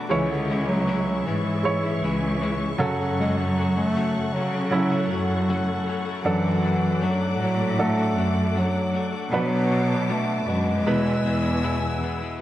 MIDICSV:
0, 0, Header, 1, 6, 480
1, 0, Start_track
1, 0, Tempo, 769231
1, 63, Time_signature, 4, 2, 24, 8
1, 7746, End_track
2, 0, Start_track
2, 0, Title_t, "String section"
2, 0, Program_c, 0, 48
2, 58, Note_on_c, 0, 68, 67
2, 58, Note_on_c, 0, 85, 79
2, 59, Note_on_c, 0, 76, 64
2, 1724, Note_off_c, 0, 68, 0
2, 1724, Note_off_c, 0, 76, 0
2, 1744, Note_on_c, 0, 69, 70
2, 1744, Note_on_c, 0, 78, 70
2, 3876, Note_off_c, 0, 85, 0
2, 3903, Note_on_c, 0, 86, 76
2, 5798, Note_off_c, 0, 69, 0
2, 5799, Note_off_c, 0, 78, 0
2, 5804, Note_off_c, 0, 86, 0
2, 5811, Note_on_c, 0, 71, 66
2, 5812, Note_on_c, 0, 86, 81
2, 5815, Note_on_c, 0, 81, 65
2, 6768, Note_off_c, 0, 86, 0
2, 6769, Note_off_c, 0, 81, 0
2, 6781, Note_on_c, 0, 80, 64
2, 6781, Note_on_c, 0, 88, 87
2, 7718, Note_off_c, 0, 71, 0
2, 7732, Note_off_c, 0, 80, 0
2, 7732, Note_off_c, 0, 88, 0
2, 7746, End_track
3, 0, Start_track
3, 0, Title_t, "Grand piano"
3, 0, Program_c, 1, 0
3, 0, Control_c, 1, 64, 127
3, 0, Note_on_c, 1, 57, 70
3, 0, Note_on_c, 1, 62, 58
3, 0, Note_on_c, 1, 71, 80
3, 56, Note_on_c, 1, 56, 68
3, 62, Note_on_c, 1, 61, 62
3, 62, Note_on_c, 1, 64, 62
3, 68, Note_on_c, 1, 73, 76
3, 70, Control_c, 1, 64, 0
3, 72, Note_off_c, 1, 62, 0
3, 72, Note_off_c, 1, 71, 0
3, 75, Note_off_c, 1, 57, 0
3, 186, Control_c, 1, 64, 127
3, 757, Note_off_c, 1, 61, 0
3, 972, Note_off_c, 1, 56, 0
3, 974, Note_off_c, 1, 64, 0
3, 977, Note_off_c, 1, 73, 0
3, 1019, Note_on_c, 1, 56, 72
3, 1027, Note_on_c, 1, 64, 68
3, 1031, Note_on_c, 1, 73, 84
3, 1737, Note_on_c, 1, 54, 91
3, 1741, Note_off_c, 1, 56, 0
3, 1742, Note_on_c, 1, 61, 81
3, 1743, Note_on_c, 1, 49, 76
3, 1745, Note_off_c, 1, 64, 0
3, 1747, Note_off_c, 1, 73, 0
3, 1747, Note_on_c, 1, 69, 98
3, 1752, Control_c, 1, 64, 0
3, 1875, Control_c, 1, 64, 127
3, 2438, Note_off_c, 1, 49, 0
3, 2652, Note_off_c, 1, 54, 0
3, 2655, Note_off_c, 1, 61, 0
3, 2657, Note_off_c, 1, 69, 0
3, 2936, Note_on_c, 1, 54, 70
3, 2941, Note_on_c, 1, 61, 70
3, 2947, Note_on_c, 1, 64, 84
3, 3852, Note_off_c, 1, 54, 0
3, 3854, Note_off_c, 1, 61, 0
3, 3857, Note_off_c, 1, 64, 0
3, 3899, Note_on_c, 1, 54, 76
3, 3902, Note_on_c, 1, 62, 70
3, 3905, Note_on_c, 1, 69, 84
3, 3911, Control_c, 1, 64, 0
3, 4031, Control_c, 1, 64, 127
3, 4813, Note_off_c, 1, 54, 0
3, 4815, Note_off_c, 1, 62, 0
3, 4816, Note_off_c, 1, 69, 0
3, 4858, Note_on_c, 1, 54, 80
3, 4861, Note_on_c, 1, 62, 70
3, 4865, Note_on_c, 1, 69, 83
3, 5772, Note_off_c, 1, 54, 0
3, 5774, Note_off_c, 1, 62, 0
3, 5776, Note_off_c, 1, 69, 0
3, 5819, Note_on_c, 1, 59, 67
3, 5820, Note_on_c, 1, 54, 66
3, 5823, Note_on_c, 1, 62, 68
3, 5824, Note_on_c, 1, 47, 62
3, 5827, Note_on_c, 1, 71, 78
3, 5831, Control_c, 1, 64, 0
3, 5944, Control_c, 1, 64, 127
3, 6517, Note_off_c, 1, 54, 0
3, 6518, Note_off_c, 1, 47, 0
3, 6733, Note_off_c, 1, 59, 0
3, 6735, Note_off_c, 1, 62, 0
3, 6737, Note_off_c, 1, 71, 0
3, 6779, Note_on_c, 1, 56, 72
3, 6781, Note_on_c, 1, 47, 57
3, 6782, Note_on_c, 1, 64, 65
3, 6783, Note_on_c, 1, 71, 79
3, 6790, Control_c, 1, 64, 0
3, 6911, Control_c, 1, 64, 127
3, 7477, Note_off_c, 1, 47, 0
3, 7693, Note_off_c, 1, 56, 0
3, 7694, Note_off_c, 1, 64, 0
3, 7695, Note_off_c, 1, 71, 0
3, 7746, End_track
4, 0, Start_track
4, 0, Title_t, "Clean electric guitar"
4, 0, Program_c, 2, 27
4, 0, Note_on_c, 2, 62, 48
4, 57, Note_on_c, 2, 49, 75
4, 60, Note_on_c, 2, 52, 76
4, 63, Note_off_c, 2, 62, 0
4, 63, Note_on_c, 2, 56, 76
4, 67, Note_on_c, 2, 61, 82
4, 70, Note_on_c, 2, 64, 88
4, 168, Note_off_c, 2, 64, 0
4, 176, Note_on_c, 2, 64, 50
4, 180, Note_off_c, 2, 49, 0
4, 180, Note_off_c, 2, 61, 0
4, 182, Note_off_c, 2, 52, 0
4, 183, Note_off_c, 2, 56, 0
4, 188, Note_on_c, 2, 61, 51
4, 196, Note_on_c, 2, 56, 41
4, 299, Note_off_c, 2, 56, 0
4, 299, Note_off_c, 2, 64, 0
4, 300, Note_on_c, 2, 52, 51
4, 305, Note_off_c, 2, 61, 0
4, 307, Note_on_c, 2, 56, 63
4, 314, Note_on_c, 2, 61, 66
4, 320, Note_on_c, 2, 64, 59
4, 538, Note_off_c, 2, 52, 0
4, 541, Note_off_c, 2, 56, 0
4, 542, Note_on_c, 2, 49, 74
4, 545, Note_off_c, 2, 61, 0
4, 545, Note_on_c, 2, 52, 72
4, 548, Note_off_c, 2, 64, 0
4, 549, Note_on_c, 2, 56, 66
4, 552, Note_on_c, 2, 61, 78
4, 556, Note_on_c, 2, 64, 74
4, 771, Note_off_c, 2, 52, 0
4, 778, Note_on_c, 2, 52, 54
4, 779, Note_off_c, 2, 56, 0
4, 782, Note_off_c, 2, 49, 0
4, 784, Note_off_c, 2, 61, 0
4, 787, Note_on_c, 2, 56, 56
4, 789, Note_off_c, 2, 64, 0
4, 792, Note_on_c, 2, 61, 56
4, 799, Note_on_c, 2, 64, 67
4, 1138, Note_off_c, 2, 64, 0
4, 1141, Note_off_c, 2, 52, 0
4, 1145, Note_off_c, 2, 56, 0
4, 1145, Note_on_c, 2, 64, 50
4, 1147, Note_off_c, 2, 61, 0
4, 1155, Note_on_c, 2, 61, 45
4, 1164, Note_on_c, 2, 56, 41
4, 1264, Note_off_c, 2, 64, 0
4, 1264, Note_on_c, 2, 52, 59
4, 1265, Note_off_c, 2, 56, 0
4, 1269, Note_off_c, 2, 61, 0
4, 1272, Note_on_c, 2, 56, 55
4, 1277, Note_on_c, 2, 61, 61
4, 1281, Note_on_c, 2, 64, 67
4, 1503, Note_off_c, 2, 52, 0
4, 1506, Note_off_c, 2, 56, 0
4, 1506, Note_on_c, 2, 49, 88
4, 1510, Note_off_c, 2, 61, 0
4, 1510, Note_on_c, 2, 52, 82
4, 1512, Note_off_c, 2, 64, 0
4, 1514, Note_on_c, 2, 56, 82
4, 1517, Note_on_c, 2, 61, 78
4, 1519, Note_on_c, 2, 64, 84
4, 1744, Note_off_c, 2, 49, 0
4, 1744, Note_off_c, 2, 52, 0
4, 1747, Note_on_c, 2, 54, 69
4, 1748, Note_off_c, 2, 56, 0
4, 1750, Note_off_c, 2, 61, 0
4, 1751, Note_off_c, 2, 64, 0
4, 1755, Note_on_c, 2, 57, 69
4, 1760, Note_on_c, 2, 61, 70
4, 1765, Note_on_c, 2, 66, 82
4, 1864, Note_off_c, 2, 66, 0
4, 1865, Note_off_c, 2, 54, 0
4, 1869, Note_off_c, 2, 57, 0
4, 1870, Note_off_c, 2, 61, 0
4, 1871, Note_on_c, 2, 66, 61
4, 1877, Note_on_c, 2, 61, 52
4, 1885, Note_on_c, 2, 57, 46
4, 1890, Note_on_c, 2, 54, 45
4, 1987, Note_off_c, 2, 66, 0
4, 1990, Note_off_c, 2, 61, 0
4, 1993, Note_off_c, 2, 54, 0
4, 1993, Note_on_c, 2, 42, 75
4, 1994, Note_off_c, 2, 57, 0
4, 1997, Note_on_c, 2, 49, 73
4, 2001, Note_on_c, 2, 54, 80
4, 2001, Note_on_c, 2, 57, 74
4, 2004, Note_on_c, 2, 61, 80
4, 2006, Note_on_c, 2, 66, 80
4, 2108, Note_off_c, 2, 42, 0
4, 2108, Note_off_c, 2, 66, 0
4, 2110, Note_off_c, 2, 49, 0
4, 2112, Note_off_c, 2, 54, 0
4, 2112, Note_off_c, 2, 57, 0
4, 2114, Note_off_c, 2, 61, 0
4, 2115, Note_on_c, 2, 66, 54
4, 2122, Note_on_c, 2, 61, 56
4, 2128, Note_on_c, 2, 57, 47
4, 2134, Note_on_c, 2, 54, 40
4, 2226, Note_off_c, 2, 54, 0
4, 2229, Note_off_c, 2, 66, 0
4, 2233, Note_off_c, 2, 57, 0
4, 2233, Note_off_c, 2, 61, 0
4, 2234, Note_on_c, 2, 54, 62
4, 2240, Note_on_c, 2, 57, 61
4, 2246, Note_on_c, 2, 61, 59
4, 2253, Note_on_c, 2, 66, 77
4, 2468, Note_off_c, 2, 54, 0
4, 2470, Note_on_c, 2, 42, 76
4, 2472, Note_off_c, 2, 57, 0
4, 2474, Note_off_c, 2, 61, 0
4, 2474, Note_on_c, 2, 49, 76
4, 2475, Note_off_c, 2, 66, 0
4, 2476, Note_on_c, 2, 54, 83
4, 2478, Note_on_c, 2, 57, 87
4, 2481, Note_on_c, 2, 61, 86
4, 2482, Note_on_c, 2, 66, 82
4, 2700, Note_off_c, 2, 54, 0
4, 2707, Note_off_c, 2, 42, 0
4, 2707, Note_off_c, 2, 57, 0
4, 2708, Note_on_c, 2, 54, 60
4, 2709, Note_off_c, 2, 49, 0
4, 2712, Note_off_c, 2, 61, 0
4, 2713, Note_off_c, 2, 66, 0
4, 2714, Note_on_c, 2, 57, 60
4, 2721, Note_on_c, 2, 61, 61
4, 2726, Note_on_c, 2, 66, 57
4, 3058, Note_off_c, 2, 66, 0
4, 3065, Note_off_c, 2, 54, 0
4, 3065, Note_off_c, 2, 61, 0
4, 3066, Note_on_c, 2, 66, 57
4, 3069, Note_off_c, 2, 57, 0
4, 3072, Note_on_c, 2, 61, 48
4, 3077, Note_on_c, 2, 57, 47
4, 3084, Note_on_c, 2, 54, 44
4, 3172, Note_off_c, 2, 54, 0
4, 3179, Note_off_c, 2, 57, 0
4, 3179, Note_on_c, 2, 54, 55
4, 3184, Note_off_c, 2, 66, 0
4, 3187, Note_on_c, 2, 57, 59
4, 3188, Note_off_c, 2, 61, 0
4, 3195, Note_on_c, 2, 61, 55
4, 3201, Note_on_c, 2, 66, 64
4, 3418, Note_off_c, 2, 54, 0
4, 3421, Note_on_c, 2, 42, 82
4, 3422, Note_off_c, 2, 57, 0
4, 3422, Note_on_c, 2, 49, 87
4, 3424, Note_off_c, 2, 61, 0
4, 3425, Note_off_c, 2, 66, 0
4, 3426, Note_on_c, 2, 54, 78
4, 3430, Note_on_c, 2, 57, 94
4, 3431, Note_on_c, 2, 61, 79
4, 3432, Note_on_c, 2, 66, 88
4, 3651, Note_off_c, 2, 54, 0
4, 3659, Note_on_c, 2, 54, 69
4, 3661, Note_off_c, 2, 57, 0
4, 3662, Note_off_c, 2, 42, 0
4, 3663, Note_off_c, 2, 49, 0
4, 3665, Note_off_c, 2, 61, 0
4, 3668, Note_off_c, 2, 66, 0
4, 3668, Note_on_c, 2, 57, 59
4, 3673, Note_on_c, 2, 61, 71
4, 3679, Note_on_c, 2, 66, 76
4, 3769, Note_off_c, 2, 66, 0
4, 3777, Note_on_c, 2, 66, 57
4, 3778, Note_off_c, 2, 61, 0
4, 3781, Note_off_c, 2, 54, 0
4, 3784, Note_off_c, 2, 57, 0
4, 3786, Note_on_c, 2, 61, 51
4, 3791, Note_on_c, 2, 57, 51
4, 3798, Note_on_c, 2, 54, 41
4, 3892, Note_off_c, 2, 54, 0
4, 3898, Note_off_c, 2, 57, 0
4, 3900, Note_off_c, 2, 66, 0
4, 3900, Note_on_c, 2, 54, 76
4, 3904, Note_off_c, 2, 61, 0
4, 3905, Note_on_c, 2, 57, 76
4, 3909, Note_on_c, 2, 62, 80
4, 3913, Note_on_c, 2, 66, 96
4, 4011, Note_off_c, 2, 66, 0
4, 4019, Note_on_c, 2, 66, 56
4, 4021, Note_off_c, 2, 54, 0
4, 4023, Note_off_c, 2, 62, 0
4, 4024, Note_off_c, 2, 57, 0
4, 4031, Note_on_c, 2, 62, 50
4, 4038, Note_on_c, 2, 57, 48
4, 4134, Note_on_c, 2, 54, 67
4, 4137, Note_off_c, 2, 57, 0
4, 4141, Note_off_c, 2, 66, 0
4, 4142, Note_off_c, 2, 62, 0
4, 4145, Note_on_c, 2, 57, 63
4, 4150, Note_on_c, 2, 62, 58
4, 4156, Note_on_c, 2, 66, 73
4, 4368, Note_off_c, 2, 54, 0
4, 4372, Note_off_c, 2, 57, 0
4, 4376, Note_on_c, 2, 54, 77
4, 4378, Note_off_c, 2, 62, 0
4, 4379, Note_on_c, 2, 57, 83
4, 4383, Note_off_c, 2, 66, 0
4, 4386, Note_on_c, 2, 62, 80
4, 4390, Note_on_c, 2, 66, 84
4, 4606, Note_off_c, 2, 54, 0
4, 4613, Note_on_c, 2, 54, 59
4, 4614, Note_off_c, 2, 57, 0
4, 4621, Note_off_c, 2, 62, 0
4, 4622, Note_on_c, 2, 57, 58
4, 4627, Note_off_c, 2, 66, 0
4, 4629, Note_on_c, 2, 62, 56
4, 4635, Note_on_c, 2, 66, 61
4, 4969, Note_off_c, 2, 66, 0
4, 4977, Note_on_c, 2, 66, 53
4, 4978, Note_off_c, 2, 54, 0
4, 4979, Note_off_c, 2, 62, 0
4, 4982, Note_off_c, 2, 57, 0
4, 4987, Note_on_c, 2, 62, 50
4, 4994, Note_on_c, 2, 57, 46
4, 5095, Note_off_c, 2, 57, 0
4, 5095, Note_on_c, 2, 54, 55
4, 5100, Note_off_c, 2, 66, 0
4, 5101, Note_off_c, 2, 62, 0
4, 5102, Note_on_c, 2, 57, 59
4, 5109, Note_on_c, 2, 62, 63
4, 5115, Note_on_c, 2, 66, 68
4, 5330, Note_off_c, 2, 54, 0
4, 5334, Note_off_c, 2, 57, 0
4, 5337, Note_on_c, 2, 54, 69
4, 5340, Note_off_c, 2, 62, 0
4, 5342, Note_off_c, 2, 66, 0
4, 5342, Note_on_c, 2, 57, 73
4, 5347, Note_on_c, 2, 62, 74
4, 5350, Note_on_c, 2, 66, 75
4, 5566, Note_off_c, 2, 54, 0
4, 5573, Note_off_c, 2, 57, 0
4, 5573, Note_on_c, 2, 54, 60
4, 5579, Note_off_c, 2, 62, 0
4, 5580, Note_on_c, 2, 57, 71
4, 5585, Note_off_c, 2, 66, 0
4, 5586, Note_on_c, 2, 62, 65
4, 5592, Note_on_c, 2, 66, 72
4, 5685, Note_off_c, 2, 66, 0
4, 5693, Note_on_c, 2, 66, 53
4, 5695, Note_off_c, 2, 62, 0
4, 5698, Note_off_c, 2, 54, 0
4, 5702, Note_off_c, 2, 57, 0
4, 5703, Note_on_c, 2, 62, 53
4, 5711, Note_on_c, 2, 57, 39
4, 5816, Note_on_c, 2, 47, 73
4, 5818, Note_off_c, 2, 57, 0
4, 5818, Note_off_c, 2, 66, 0
4, 5819, Note_off_c, 2, 62, 0
4, 5819, Note_on_c, 2, 54, 83
4, 5825, Note_on_c, 2, 57, 71
4, 5827, Note_on_c, 2, 62, 88
4, 5829, Note_on_c, 2, 66, 85
4, 5924, Note_off_c, 2, 66, 0
4, 5931, Note_on_c, 2, 66, 54
4, 5937, Note_off_c, 2, 62, 0
4, 5939, Note_off_c, 2, 47, 0
4, 5941, Note_off_c, 2, 54, 0
4, 5944, Note_off_c, 2, 57, 0
4, 5944, Note_on_c, 2, 62, 51
4, 5953, Note_on_c, 2, 57, 45
4, 6049, Note_off_c, 2, 57, 0
4, 6049, Note_on_c, 2, 54, 66
4, 6056, Note_off_c, 2, 62, 0
4, 6057, Note_off_c, 2, 66, 0
4, 6057, Note_on_c, 2, 57, 60
4, 6064, Note_on_c, 2, 62, 65
4, 6067, Note_on_c, 2, 66, 70
4, 6290, Note_off_c, 2, 54, 0
4, 6295, Note_off_c, 2, 57, 0
4, 6295, Note_on_c, 2, 47, 73
4, 6296, Note_off_c, 2, 62, 0
4, 6298, Note_on_c, 2, 54, 74
4, 6299, Note_off_c, 2, 66, 0
4, 6302, Note_on_c, 2, 57, 87
4, 6303, Note_on_c, 2, 62, 82
4, 6306, Note_on_c, 2, 66, 80
4, 6524, Note_off_c, 2, 54, 0
4, 6531, Note_on_c, 2, 54, 55
4, 6537, Note_off_c, 2, 62, 0
4, 6539, Note_off_c, 2, 47, 0
4, 6542, Note_off_c, 2, 66, 0
4, 6543, Note_off_c, 2, 57, 0
4, 6545, Note_on_c, 2, 62, 62
4, 6550, Note_on_c, 2, 66, 64
4, 6776, Note_on_c, 2, 40, 68
4, 6777, Note_off_c, 2, 54, 0
4, 6780, Note_on_c, 2, 47, 72
4, 6781, Note_on_c, 2, 52, 70
4, 6783, Note_on_c, 2, 56, 72
4, 6784, Note_off_c, 2, 62, 0
4, 6785, Note_off_c, 2, 66, 0
4, 6786, Note_on_c, 2, 59, 86
4, 6788, Note_on_c, 2, 64, 77
4, 6887, Note_off_c, 2, 64, 0
4, 6895, Note_off_c, 2, 59, 0
4, 6895, Note_on_c, 2, 64, 57
4, 6900, Note_off_c, 2, 40, 0
4, 6900, Note_off_c, 2, 56, 0
4, 6901, Note_off_c, 2, 47, 0
4, 6902, Note_off_c, 2, 52, 0
4, 6903, Note_on_c, 2, 59, 49
4, 6914, Note_on_c, 2, 52, 41
4, 7007, Note_off_c, 2, 52, 0
4, 7015, Note_on_c, 2, 52, 55
4, 7019, Note_off_c, 2, 64, 0
4, 7021, Note_off_c, 2, 59, 0
4, 7023, Note_on_c, 2, 56, 60
4, 7029, Note_on_c, 2, 59, 60
4, 7034, Note_on_c, 2, 64, 63
4, 7252, Note_off_c, 2, 52, 0
4, 7253, Note_on_c, 2, 40, 79
4, 7254, Note_off_c, 2, 56, 0
4, 7257, Note_on_c, 2, 47, 84
4, 7258, Note_off_c, 2, 59, 0
4, 7258, Note_off_c, 2, 64, 0
4, 7259, Note_on_c, 2, 52, 78
4, 7262, Note_on_c, 2, 56, 77
4, 7265, Note_on_c, 2, 59, 84
4, 7266, Note_on_c, 2, 64, 89
4, 7488, Note_off_c, 2, 52, 0
4, 7496, Note_off_c, 2, 56, 0
4, 7496, Note_on_c, 2, 52, 69
4, 7498, Note_off_c, 2, 40, 0
4, 7500, Note_off_c, 2, 47, 0
4, 7502, Note_off_c, 2, 59, 0
4, 7504, Note_off_c, 2, 64, 0
4, 7504, Note_on_c, 2, 56, 68
4, 7510, Note_on_c, 2, 59, 71
4, 7517, Note_on_c, 2, 64, 63
4, 7610, Note_off_c, 2, 64, 0
4, 7618, Note_off_c, 2, 59, 0
4, 7618, Note_on_c, 2, 64, 61
4, 7619, Note_off_c, 2, 52, 0
4, 7623, Note_off_c, 2, 56, 0
4, 7626, Note_on_c, 2, 59, 59
4, 7632, Note_on_c, 2, 56, 50
4, 7637, Note_on_c, 2, 52, 47
4, 7740, Note_off_c, 2, 64, 0
4, 7744, Note_off_c, 2, 59, 0
4, 7746, Note_off_c, 2, 52, 0
4, 7746, Note_off_c, 2, 56, 0
4, 7746, End_track
5, 0, Start_track
5, 0, Title_t, "Bass clarinet"
5, 0, Program_c, 3, 71
5, 63, Note_on_c, 3, 52, 90
5, 175, Note_off_c, 3, 52, 0
5, 186, Note_on_c, 3, 50, 78
5, 408, Note_off_c, 3, 50, 0
5, 416, Note_on_c, 3, 54, 91
5, 792, Note_on_c, 3, 52, 81
5, 801, Note_off_c, 3, 54, 0
5, 907, Note_off_c, 3, 52, 0
5, 913, Note_on_c, 3, 52, 84
5, 1723, Note_off_c, 3, 52, 0
5, 1998, Note_on_c, 3, 56, 106
5, 2103, Note_off_c, 3, 56, 0
5, 2117, Note_on_c, 3, 54, 85
5, 2334, Note_off_c, 3, 54, 0
5, 2349, Note_on_c, 3, 57, 116
5, 2705, Note_on_c, 3, 54, 98
5, 2714, Note_off_c, 3, 57, 0
5, 2821, Note_off_c, 3, 54, 0
5, 2825, Note_on_c, 3, 54, 81
5, 3639, Note_off_c, 3, 54, 0
5, 3903, Note_on_c, 3, 52, 97
5, 4392, Note_on_c, 3, 54, 107
5, 4401, Note_off_c, 3, 52, 0
5, 4627, Note_off_c, 3, 54, 0
5, 4632, Note_on_c, 3, 54, 98
5, 4851, Note_off_c, 3, 54, 0
5, 4872, Note_on_c, 3, 57, 112
5, 5356, Note_on_c, 3, 54, 93
5, 5365, Note_off_c, 3, 57, 0
5, 5709, Note_off_c, 3, 54, 0
5, 5841, Note_on_c, 3, 54, 104
5, 6317, Note_on_c, 3, 57, 92
5, 6326, Note_off_c, 3, 54, 0
5, 6546, Note_on_c, 3, 56, 104
5, 6555, Note_off_c, 3, 57, 0
5, 7505, Note_off_c, 3, 56, 0
5, 7746, End_track
6, 0, Start_track
6, 0, Title_t, "Cello section"
6, 0, Program_c, 4, 48
6, 63, Note_on_c, 4, 37, 115
6, 758, Note_off_c, 4, 37, 0
6, 786, Note_on_c, 4, 44, 82
6, 1239, Note_off_c, 4, 44, 0
6, 1266, Note_on_c, 4, 37, 104
6, 1720, Note_off_c, 4, 37, 0
6, 1745, Note_on_c, 4, 42, 102
6, 2679, Note_off_c, 4, 42, 0
6, 2707, Note_on_c, 4, 49, 82
6, 3160, Note_off_c, 4, 49, 0
6, 3182, Note_on_c, 4, 42, 94
6, 3638, Note_off_c, 4, 42, 0
6, 3899, Note_on_c, 4, 42, 112
6, 4596, Note_off_c, 4, 42, 0
6, 4622, Note_on_c, 4, 45, 99
6, 5078, Note_off_c, 4, 45, 0
6, 5100, Note_on_c, 4, 42, 95
6, 5556, Note_off_c, 4, 42, 0
6, 5822, Note_on_c, 4, 47, 111
6, 6518, Note_off_c, 4, 47, 0
6, 6543, Note_on_c, 4, 42, 90
6, 6781, Note_on_c, 4, 40, 94
6, 6783, Note_off_c, 4, 42, 0
6, 7005, Note_off_c, 4, 40, 0
6, 7026, Note_on_c, 4, 40, 96
6, 7479, Note_off_c, 4, 40, 0
6, 7746, End_track
0, 0, End_of_file